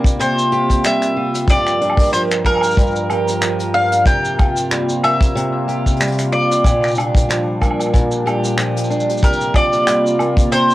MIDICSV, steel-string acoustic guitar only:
0, 0, Header, 1, 2, 480
1, 0, Start_track
1, 0, Tempo, 645161
1, 1106, Time_signature, 4, 2, 24, 8
1, 7994, End_track
2, 0, Start_track
2, 0, Title_t, "Steel-string acoustic guitar"
2, 0, Program_c, 0, 25
2, 0, Note_on_c, 0, 48, 82
2, 0, Note_on_c, 0, 55, 71
2, 0, Note_on_c, 0, 58, 60
2, 0, Note_on_c, 0, 65, 59
2, 0, Note_on_c, 0, 67, 70
2, 135, Note_off_c, 0, 48, 0
2, 144, Note_on_c, 0, 48, 89
2, 385, Note_off_c, 0, 67, 0
2, 388, Note_on_c, 0, 67, 70
2, 624, Note_off_c, 0, 55, 0
2, 627, Note_on_c, 0, 55, 70
2, 862, Note_off_c, 0, 65, 0
2, 865, Note_on_c, 0, 65, 65
2, 1109, Note_on_c, 0, 43, 79
2, 1111, Note_off_c, 0, 67, 0
2, 1114, Note_on_c, 0, 67, 72
2, 1159, Note_off_c, 0, 48, 0
2, 1345, Note_off_c, 0, 65, 0
2, 1348, Note_on_c, 0, 62, 64
2, 1583, Note_off_c, 0, 55, 0
2, 1586, Note_on_c, 0, 53, 64
2, 1826, Note_off_c, 0, 58, 0
2, 1829, Note_on_c, 0, 58, 59
2, 2055, Note_off_c, 0, 43, 0
2, 2063, Note_on_c, 0, 43, 87
2, 2305, Note_off_c, 0, 67, 0
2, 2308, Note_on_c, 0, 67, 70
2, 2541, Note_off_c, 0, 53, 0
2, 2544, Note_on_c, 0, 53, 68
2, 2774, Note_off_c, 0, 62, 0
2, 2783, Note_on_c, 0, 62, 63
2, 3026, Note_on_c, 0, 48, 84
2, 3028, Note_off_c, 0, 67, 0
2, 3031, Note_on_c, 0, 67, 71
2, 3078, Note_off_c, 0, 62, 0
2, 3079, Note_off_c, 0, 43, 0
2, 3266, Note_on_c, 0, 65, 62
2, 3502, Note_off_c, 0, 53, 0
2, 3505, Note_on_c, 0, 55, 70
2, 3747, Note_off_c, 0, 58, 0
2, 3750, Note_on_c, 0, 58, 64
2, 3975, Note_off_c, 0, 48, 0
2, 3984, Note_on_c, 0, 48, 86
2, 4222, Note_off_c, 0, 67, 0
2, 4225, Note_on_c, 0, 67, 67
2, 4462, Note_off_c, 0, 55, 0
2, 4465, Note_on_c, 0, 55, 64
2, 4700, Note_off_c, 0, 65, 0
2, 4703, Note_on_c, 0, 65, 65
2, 4944, Note_on_c, 0, 46, 86
2, 4947, Note_off_c, 0, 67, 0
2, 4950, Note_on_c, 0, 67, 67
2, 4999, Note_off_c, 0, 48, 0
2, 5183, Note_off_c, 0, 65, 0
2, 5186, Note_on_c, 0, 62, 65
2, 5420, Note_off_c, 0, 55, 0
2, 5422, Note_on_c, 0, 53, 72
2, 5660, Note_off_c, 0, 58, 0
2, 5663, Note_on_c, 0, 58, 67
2, 5894, Note_off_c, 0, 46, 0
2, 5903, Note_on_c, 0, 46, 91
2, 6141, Note_off_c, 0, 67, 0
2, 6144, Note_on_c, 0, 67, 69
2, 6380, Note_off_c, 0, 53, 0
2, 6383, Note_on_c, 0, 53, 73
2, 6614, Note_off_c, 0, 62, 0
2, 6623, Note_on_c, 0, 62, 71
2, 6862, Note_on_c, 0, 48, 81
2, 6864, Note_off_c, 0, 67, 0
2, 6867, Note_on_c, 0, 67, 71
2, 6919, Note_off_c, 0, 46, 0
2, 6919, Note_off_c, 0, 62, 0
2, 7103, Note_on_c, 0, 65, 65
2, 7340, Note_off_c, 0, 53, 0
2, 7343, Note_on_c, 0, 55, 70
2, 7579, Note_off_c, 0, 58, 0
2, 7582, Note_on_c, 0, 58, 62
2, 7815, Note_off_c, 0, 48, 0
2, 7824, Note_on_c, 0, 48, 85
2, 7994, Note_off_c, 0, 48, 0
2, 7994, Note_off_c, 0, 55, 0
2, 7994, Note_off_c, 0, 58, 0
2, 7994, Note_off_c, 0, 65, 0
2, 7994, Note_off_c, 0, 67, 0
2, 7994, End_track
0, 0, End_of_file